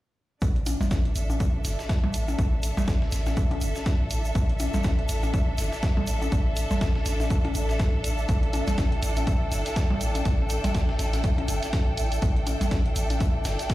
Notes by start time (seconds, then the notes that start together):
0.42 A1 D4 E5, kick, closed hi-hat, shaker
0.56 closed hi-hat
0.66 closed hi-hat, percussion blips, shaker
0.81 A1, snare, percussion blips, shaker
0.91 kick, snare, closed hi-hat, percussion blips, shaker
0.96 E5
1.05 A4, closed hi-hat
1.15 A1, closed hi-hat, shaker
1.30 percussion blips, shaker
1.40 kick, closed hi-hat, shaker
1.65 G1, snare, closed hi-hat, shaker
1.79 snare, shaker
1.89 kick, snare, closed hi-hat, shaker
2.04 A1, percussion blips
2.14 closed hi-hat, shaker
2.28 percussion blips, shaker
2.39 A1, kick, closed hi-hat, shaker
2.63 closed hi-hat, shaker
2.77 A1, snare, percussion blips, shaker
2.87 kick, snare, closed hi-hat, percussion blips, shaker
3.02 snare
3.12 A1, snare, closed hi-hat, shaker
3.26 snare, percussion blips, shaker
3.37 kick, closed hi-hat, shaker
3.51 closed hi-hat, percussion blips
3.61 G1, closed hi-hat, shaker
3.75 snare, shaker
3.86 kick, snare, closed hi-hat, shaker
4.00 A1
4.11 closed hi-hat, shaker
4.25 shaker
4.35 A1, kick, closed hi-hat, shaker
4.49 closed hi-hat
4.60 closed hi-hat, percussion blips, shaker
4.74 A1, snare, percussion blips, shaker
4.83 kick, snare, closed hi-hat, percussion blips, shaker
4.99 closed hi-hat
5.09 A1, closed hi-hat, shaker
5.23 percussion blips, shaker
5.34 kick, closed hi-hat, shaker
5.58 G1, snare, closed hi-hat, shaker
5.72 snare, shaker
5.82 kick, snare, closed hi-hat, shaker
5.97 A1, percussion blips
6.07 closed hi-hat, shaker
6.22 percussion blips, shaker
6.32 A1, kick, closed hi-hat, shaker
6.56 closed hi-hat, shaker
6.71 A1, snare, percussion blips, shaker
6.81 kick, snare, closed hi-hat, percussion blips, shaker
6.95 snare
7.06 A1, snare, closed hi-hat, shaker
7.20 snare, percussion blips, shaker
7.30 kick, closed hi-hat, shaker
7.45 closed hi-hat, percussion blips
7.55 A1, closed hi-hat, shaker
7.69 snare, shaker
7.79 kick, snare, closed hi-hat, shaker
7.94 A1
8.04 closed hi-hat, shaker
8.18 shaker
8.29 A1, kick, closed hi-hat, shaker
8.43 closed hi-hat
8.53 closed hi-hat, percussion blips, shaker
8.67 A1, snare, closed hi-hat, percussion blips, shaker
8.78 kick, snare, closed hi-hat, percussion blips, shaker
8.83 G5
8.92 closed hi-hat
9.02 A1, closed hi-hat, shaker
9.16 closed hi-hat, percussion blips, shaker
9.27 kick, closed hi-hat, shaker
9.52 G1, snare, closed hi-hat, shaker
9.66 snare, closed hi-hat, shaker
9.76 kick, snare, closed hi-hat, shaker
9.91 A1, percussion blips
10.01 closed hi-hat, shaker
10.15 closed hi-hat, percussion blips, shaker
10.25 A1, kick, closed hi-hat, shaker
10.50 closed hi-hat, shaker
10.64 A1, snare, closed hi-hat, percussion blips, shaker
10.74 kick, snare, closed hi-hat, percussion blips, shaker
10.89 snare
10.99 A1, snare, closed hi-hat, shaker
11.13 snare, closed hi-hat, percussion blips, shaker
11.24 kick, closed hi-hat, shaker
11.38 closed hi-hat, percussion blips
11.48 G1, closed hi-hat, shaker
11.63 snare, closed hi-hat, shaker
11.73 kick, snare, closed hi-hat, shaker
11.87 A1
11.97 closed hi-hat, shaker
12.12 closed hi-hat, shaker
12.22 A1, kick, closed hi-hat, shaker
12.36 closed hi-hat
12.47 closed hi-hat, percussion blips, shaker
12.61 A1, snare, closed hi-hat, percussion blips, shaker
12.71 kick, snare, closed hi-hat, percussion blips, shaker
12.86 closed hi-hat
12.96 A1, closed hi-hat, shaker
13.10 closed hi-hat, percussion blips, shaker
13.20 kick, closed hi-hat, shaker
13.45 G1, snare, closed hi-hat, shaker
13.59 snare, closed hi-hat, shaker
13.70 kick, snare, closed hi-hat, shaker